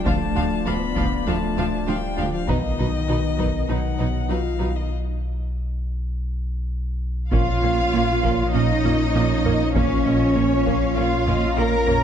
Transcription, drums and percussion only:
0.06 taiko
0.96 taiko
2.48 taiko
3.39 taiko
7.33 taiko
8.24 taiko
8.85 taiko low-mid
9.45 taiko low-mid
9.76 taiko
10.66 taiko
11.27 taiko low-mid
11.88 taiko low-mid

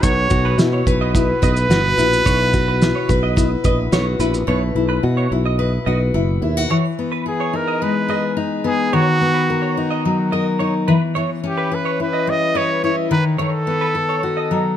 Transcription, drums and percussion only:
0.03 kick, shaker
0.30 kick, shaker
0.59 snare, shaker
0.87 kick, shaker
1.15 kick, shaker
1.43 kick, shaker
1.57 shaker
1.71 snare, shaker
1.99 shaker
2.13 shaker
2.26 kick, shaker
2.54 kick, shaker
2.82 snare, shaker
3.09 kick, shaker
3.37 kick, shaker
3.64 kick, shaker
3.93 snare, shaker
4.20 shaker
4.34 shaker

